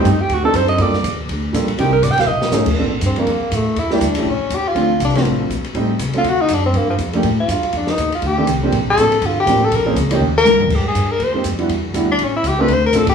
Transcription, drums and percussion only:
0.05 hi-hat pedal medium
0.05 ride medium
0.29 kick soft
0.29 ride medium
0.54 kick soft
0.54 hi-hat pedal medium
0.54 ride medium
0.68 ride medium
0.78 kick soft
0.78 ride medium
0.93 snare soft
1.04 kick soft
1.04 hi-hat pedal medium
1.04 ride medium
1.29 kick soft
1.29 ride medium
1.53 kick soft
1.53 hi-hat pedal medium
1.53 ride medium
1.68 ride medium
1.78 kick soft
1.78 ride medium
2.03 kick soft
2.03 hi-hat pedal medium
2.03 ride medium
2.12 snare soft
2.18 snare medium
2.18 ride medium
2.42 snare medium
2.52 snare medium
2.52 hi-hat pedal medium
2.66 kick medium
2.66 crash medium
3.01 kick soft
3.01 hi-hat pedal medium
3.01 ride medium
3.16 ride medium
3.27 kick soft
3.27 ride medium
3.52 kick soft
3.52 hi-hat pedal medium
3.52 ride medium
3.76 kick soft
3.76 ride medium
3.91 snare soft
4.01 kick soft
4.01 hi-hat pedal medium
4.01 ride medium
4.15 ride medium
4.26 kick soft
4.50 kick soft
4.50 hi-hat pedal medium
4.50 ride medium
4.75 kick soft
4.75 ride medium
5.00 kick soft
5.00 hi-hat pedal medium
5.00 ride medium
5.09 snare soft
5.15 snare medium
5.15 ride medium
5.25 kick soft
5.25 ride medium
5.50 kick soft
5.50 hi-hat pedal medium
5.50 ride medium
5.64 ride medium
5.74 kick soft
5.74 ride medium
5.99 kick soft
5.99 hi-hat pedal medium
5.99 ride medium
6.13 ride medium
6.24 kick soft
6.24 ride medium
6.49 kick soft
6.49 hi-hat pedal medium
6.49 ride medium
6.74 kick soft
6.74 ride medium
6.98 kick soft
6.98 hi-hat pedal medium
6.98 ride medium
7.13 ride medium
7.23 kick soft
7.23 ride medium
7.48 kick soft
7.48 hi-hat pedal medium
7.48 ride medium
7.63 ride soft
7.73 kick soft
7.73 ride medium
7.87 snare medium
7.98 kick soft
7.98 hi-hat pedal medium
7.98 ride medium
8.12 ride medium
8.22 kick soft
8.22 ride medium
8.47 kick soft
8.47 hi-hat pedal soft
8.47 ride medium
8.72 kick soft
8.72 ride medium
8.97 kick soft
8.97 hi-hat pedal medium
8.97 ride medium
9.12 ride medium
9.22 kick soft
9.22 ride medium
9.46 kick soft
9.46 hi-hat pedal medium
9.46 ride medium
9.71 kick soft
9.71 ride medium
9.96 kick soft
9.96 hi-hat pedal medium
9.96 ride medium
10.11 ride medium
10.21 mid tom medium
10.45 hi-hat pedal medium
10.45 high tom medium
10.60 floor tom medium
10.70 kick medium
10.70 crash medium
10.95 kick soft
10.95 hi-hat pedal medium
10.95 ride medium
11.20 kick soft
11.20 ride medium
11.44 kick soft
11.44 hi-hat pedal medium
11.44 ride medium
11.59 ride soft
11.69 kick soft
11.69 ride medium
11.94 kick soft
11.94 hi-hat pedal medium
11.94 ride medium
12.19 kick soft
12.19 ride medium
12.44 kick soft
12.44 hi-hat pedal medium
12.44 ride medium
12.68 kick soft
12.68 ride medium
12.93 kick soft
12.93 snare soft
12.93 hi-hat pedal medium
12.93 ride medium
13.07 kick medium
13.07 ride medium

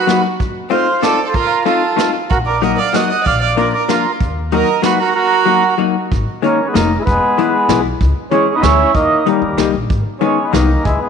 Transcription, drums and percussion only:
0.09 snare medium
0.09 closed hi-hat soft
0.40 kick medium
0.40 closed hi-hat medium
0.71 closed hi-hat soft
1.03 snare medium
1.03 closed hi-hat soft
1.34 kick medium
1.34 closed hi-hat soft
1.66 closed hi-hat soft
1.98 snare medium
1.98 closed hi-hat soft
2.31 kick medium
2.31 closed hi-hat soft
2.63 closed hi-hat soft
2.94 snare medium
2.94 closed hi-hat soft
3.26 kick medium
3.26 closed hi-hat soft
3.57 closed hi-hat soft
3.89 snare medium
3.89 closed hi-hat soft
4.20 kick medium
4.20 closed hi-hat soft
4.52 closed hi-hat soft
4.83 snare medium
4.83 closed hi-hat soft
6.11 kick medium
6.11 closed hi-hat soft
6.44 closed hi-hat soft
6.75 snare medium
6.75 closed hi-hat soft
7.07 kick loud
7.07 closed hi-hat soft
7.38 closed hi-hat soft
7.69 snare medium
7.69 closed hi-hat soft
8.01 kick medium
8.01 closed hi-hat soft
8.31 closed hi-hat soft
8.63 snare medium
8.63 closed hi-hat soft
8.95 kick medium
8.95 closed hi-hat medium
9.26 closed hi-hat soft
9.58 snare medium
9.58 closed hi-hat soft
9.90 kick medium
9.90 closed hi-hat medium
10.22 closed hi-hat soft
10.54 snare medium
10.54 closed hi-hat medium
10.85 kick loud
10.85 closed hi-hat medium

